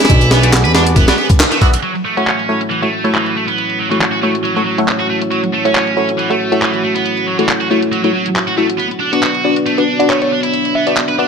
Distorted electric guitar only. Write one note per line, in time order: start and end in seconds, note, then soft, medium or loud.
0.00 0.30 E4 loud
0.31 0.43 B3 medium
0.43 0.50 A3 medium
0.64 0.72 B4 loud
0.75 0.83 D4 loud
0.97 1.05 B3 loud
1.08 1.15 B3 medium
1.18 1.26 B3 medium
1.52 1.59 A3 medium
1.61 1.66 F#4 medium
1.83 1.91 F#3 medium
2.05 2.16 A3 medium
2.16 2.59 C#4 medium
2.70 2.81 E3 medium
2.82 3.13 A3 medium
3.14 3.35 E3 medium
3.36 3.44 A3 medium
3.47 3.78 B3 loud
3.79 3.90 F#3 medium
3.91 3.98 E3 medium
4.12 4.20 F#4 medium
4.23 4.31 A3 loud
4.44 4.52 F#3 medium
4.56 4.63 F#3 medium
4.66 4.77 F#3 medium
4.99 5.06 F#4 medium
5.10 5.18 A3 loud
5.31 5.39 F#3 medium
5.53 5.64 A3 medium
5.64 6.07 C#4 medium
6.18 6.29 E3 medium
6.30 6.61 A3 medium
6.62 6.83 E3 medium
6.84 6.92 A3 loud
6.95 7.26 B3 loud
7.27 7.38 F#3 medium
7.39 7.46 E3 medium
7.61 7.67 F#4 medium
7.70 7.79 A3 medium
7.92 8.00 F#3 medium
8.04 8.11 F#3 medium
8.14 8.25 F#3 medium
8.47 8.54 F#4 medium
8.57 8.65 A3 medium
8.79 8.87 B3 medium
9.00 9.12 D4 medium
9.12 9.55 F#4 medium
9.66 9.77 A3 medium
9.78 10.09 D4 medium
10.10 10.31 A3 medium
10.32 10.40 D4 medium
10.43 10.74 E4 medium
10.75 10.86 B3 medium
10.87 10.94 A3 medium
11.09 11.15 B4 medium
11.19 11.27 D4 loud